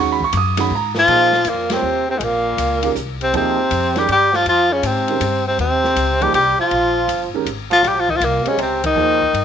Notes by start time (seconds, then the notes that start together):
Already playing: D#2 D#3 G#3 C#4 F#4
0.12 B5
0.20 C#6, kick
0.33 F#2 D6, hi-hat pedal, ride
0.37 D#6
0.57 D#3 G#3 C#4 F#4 B5, snare, ride
0.71 G#2
0.75 A#5
0.95 F3, snare
0.99 F4
1.08 A#2 F3 A#3 D#4 G#4 C5, ride
1.33 snare
1.45 F2 A#2, hi-hat pedal, ride
1.49 A#3
1.70 C3 G3 C4 F4 A#4 C#5, snare, ride
1.82 D#2
2.09 C3 C4
2.16 A#1 G#2 G#3
2.21 A#2 A#3, ride
2.57 C#2, hi-hat pedal, ride
2.83 D#3 G#3 C#4 G4 A#4, ride
2.95 C2, hi-hat pedal
3.21 C3 C4, ride
3.33 D#2 C3 F3 A#3 C4 D#4 G#4 C5, ride
3.71 F2, hi-hat pedal, ride
3.96 D#3 G3 G#3 C#4 G4 A#4, snare, ride
4.08 G2 G3 G4, ride
4.33 F3 F4, snare
4.45 F2 F3 F4, ride
4.72 C#3 C#4
4.83 G#2 C3 C4, hi-hat pedal, ride
5.08 D#3 G#3 C#4 G4 A#4, ride
5.20 G2, hi-hat pedal, ride
5.47 C3 C4
5.58 D#2 C3 C4, ride
5.84 snare
5.96 C#2, hi-hat pedal, ride
6.21 F3 G3 A#3 D#4 G4 G#4 C5, ride
6.33 C2 G3 G4, ride
6.58 F3 F4, muted upright bass stroke
6.71 A#1, ride
7.08 G1, hi-hat pedal, ride
7.33 D#3 G#3 C#4 G4 A#4, muted upright bass stroke
7.46 G#1, hi-hat pedal, ride
7.70 F3 F4, snare, ride
7.83 A#1 G3, snare, ride
7.88 G4
7.98 F3 F4
8.09 D#3 D#4, kick
8.15 F3 F4
8.20 C2 A#2, hi-hat pedal, ride
8.25 A#3
8.45 C#3 G#3 C#4 G4 C5 D#5, ride
8.58 C#2 C3, ride
8.62 C4
8.84 D#3 D#4, kick, ride
8.96 D#2 F3 A#3 D#4 G#4 C5
9.21 kick
9.33 G2, ride